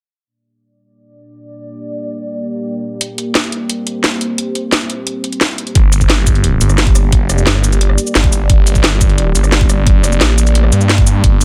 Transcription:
0.27 ambient pad A#3 G4 D5
3.01 ambient pad C5, closed hi-hat
3.18 closed hi-hat
3.35 snare, closed hi-hat
3.44 closed hi-hat
3.52 closed hi-hat
3.70 closed hi-hat
3.87 closed hi-hat
4.04 snare, closed hi-hat
4.21 closed hi-hat
4.38 closed hi-hat
4.55 closed hi-hat
4.72 snare, closed hi-hat
4.81 closed hi-hat
4.90 closed hi-hat
5.07 closed hi-hat
5.24 closed hi-hat
5.32 closed hi-hat
5.41 snare, closed hi-hat
5.58 closed hi-hat
5.67 closed hi-hat
5.75 detuned saw bass G1, ambient pad A#3 G4 D5, kick, closed hi-hat
5.92 closed hi-hat, cabasa
6.01 kick, cabasa
6.10 detuned saw bass G1, snare, closed hi-hat
6.27 kick, closed hi-hat, cabasa
6.35 closed hi-hat
6.44 closed hi-hat
6.61 detuned saw bass G1, closed hi-hat, cabasa
6.70 cross-stick, cabasa
6.78 snare, closed hi-hat
6.87 kick, closed hi-hat
6.95 cross-stick, closed hi-hat, cabasa
7.12 kick, closed hi-hat
7.21 detuned saw bass F#1
7.30 cross-stick, closed hi-hat, cabasa
7.38 cabasa
7.47 detuned saw bass G1, snare, closed hi-hat
7.55 cross-stick
7.64 closed hi-hat, cabasa
7.72 closed hi-hat, cabasa
7.81 closed hi-hat
7.90 cross-stick
7.98 closed hi-hat, cabasa
8.07 cabasa
8.15 detuned saw bass G1, snare, closed hi-hat
8.24 kick, closed hi-hat
8.32 closed hi-hat, cabasa
8.50 detuned saw bass G1, kick, closed hi-hat
8.67 closed hi-hat, cabasa
8.75 kick, cabasa
8.84 detuned saw bass G1, snare, closed hi-hat
9.01 kick, closed hi-hat, cabasa
9.10 closed hi-hat
9.18 closed hi-hat
9.35 detuned saw bass G1, closed hi-hat, cabasa
9.44 cross-stick, cabasa
9.52 snare, closed hi-hat
9.61 kick, closed hi-hat
9.69 cross-stick, closed hi-hat, cabasa
9.87 kick, closed hi-hat
9.95 detuned saw bass F#1
10.04 cross-stick, closed hi-hat, cabasa
10.12 cabasa
10.21 detuned saw bass A1, snare, closed hi-hat
10.30 cross-stick
10.38 closed hi-hat, cabasa
10.47 closed hi-hat, cabasa
10.55 closed hi-hat
10.64 cross-stick
10.72 detuned saw bass G2, closed hi-hat, cabasa
10.81 cabasa
10.89 snare, closed hi-hat
10.98 kick, closed hi-hat
11.07 closed hi-hat, cabasa
11.24 detuned saw bass G1, kick, closed hi-hat
11.41 closed hi-hat, cabasa

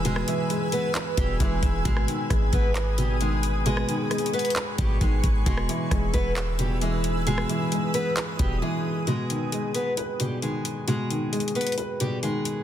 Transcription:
Already playing: 808-style bass E1, grand piano B2 E3 G#3 B4, ambient pad B4 G#5 E6
0.05 grand piano B2, steel-string acoustic guitar G#3 G#4, closed hi-hat
0.16 cross-stick
0.27 grand piano E3, closed hi-hat
0.50 grand piano G#3, closed hi-hat
0.72 steel-string acoustic guitar B3 B4, closed hi-hat
0.95 grand piano B4, clap, closed hi-hat
1.17 808-style bass E1, grand piano B2, steel-string acoustic guitar G3 G4, kick, closed hi-hat
1.40 808-style bass E1, grand piano E3, steel-string acoustic guitar G#3 G#4, kick, closed hi-hat
1.63 808-style bass E1, kick, closed hi-hat
1.85 808-style bass G#1, grand piano B2, steel-string acoustic guitar G#3 G#4, ambient pad D#6, kick, closed hi-hat
1.97 cross-stick
2.08 grand piano D#3, closed hi-hat
2.30 808-style bass G#1, grand piano G#3, kick, cross-stick, closed hi-hat
2.53 808-style bass G#1, steel-string acoustic guitar B3 B4, kick, closed hi-hat
2.75 grand piano B4, clap, closed hi-hat
2.98 grand piano B2, steel-string acoustic guitar G3 G4, closed hi-hat
3.21 grand piano D#3, steel-string acoustic guitar G#3 G#4, closed hi-hat
3.43 closed hi-hat
3.66 grand piano B2, steel-string acoustic guitar G#3 G#4, ambient pad C#6, closed hi-hat
3.77 cross-stick
3.88 grand piano D#3, closed hi-hat
4.11 grand piano G#3, cross-stick, closed hi-hat
4.18 closed hi-hat
4.26 closed hi-hat
4.33 steel-string acoustic guitar B3 B4, closed hi-hat
4.39 closed hi-hat
4.45 closed hi-hat
4.50 closed hi-hat
4.56 grand piano B4, clap, closed hi-hat
4.78 808-style bass G#1, grand piano B2, steel-string acoustic guitar G3 G4, kick, closed hi-hat
5.01 808-style bass G#1, grand piano D#3, steel-string acoustic guitar G#3 G#4, kick, closed hi-hat
5.24 808-style bass G#1, kick, closed hi-hat
5.46 808-style bass E1, grand piano B2, steel-string acoustic guitar G#3 G#4, ambient pad B4 E6, kick, closed hi-hat
5.57 cross-stick
5.69 grand piano E3, closed hi-hat
5.91 808-style bass E1, grand piano G#3, kick, cross-stick, closed hi-hat
6.14 808-style bass E1, steel-string acoustic guitar B3 B4, kick, closed hi-hat
6.36 grand piano B4, clap, closed hi-hat
6.59 grand piano B2, steel-string acoustic guitar G3 G4, closed hi-hat
6.82 grand piano E3, steel-string acoustic guitar G#3 G#4, closed hi-hat
7.04 closed hi-hat
7.27 grand piano B2, steel-string acoustic guitar G#3 G#4, ambient pad D#6, closed hi-hat
7.38 cross-stick
7.49 grand piano E3, closed hi-hat
7.72 grand piano G#3, closed hi-hat
7.94 steel-string acoustic guitar B3 B4, closed hi-hat
8.17 grand piano B4, clap, closed hi-hat
8.39 808-style bass E1, grand piano B2, steel-string acoustic guitar G3 G4, kick, closed hi-hat
8.62 grand piano E3, steel-string acoustic guitar G#3 G#4
9.07 grand piano B2, steel-string acoustic guitar G#3 G#4, closed hi-hat
9.30 grand piano D#3, closed hi-hat
9.52 grand piano G#3, closed hi-hat
9.75 steel-string acoustic guitar B3 B4, closed hi-hat
9.97 grand piano B4, closed hi-hat
10.20 grand piano B2, steel-string acoustic guitar G3 G4, closed hi-hat
10.42 grand piano D#3, steel-string acoustic guitar G#3 G#4, closed hi-hat
10.65 closed hi-hat
10.88 grand piano B2, steel-string acoustic guitar G#3 G#4, closed hi-hat
11.10 grand piano D#3, closed hi-hat
11.33 grand piano G#3, closed hi-hat
11.40 closed hi-hat
11.48 closed hi-hat
11.55 steel-string acoustic guitar B3 B4, closed hi-hat
11.61 closed hi-hat
11.67 closed hi-hat
11.72 closed hi-hat
11.78 grand piano B4, closed hi-hat
12.00 grand piano B2, steel-string acoustic guitar G3 G4, closed hi-hat
12.23 grand piano D#3, steel-string acoustic guitar G#3 G#4, closed hi-hat
12.45 closed hi-hat

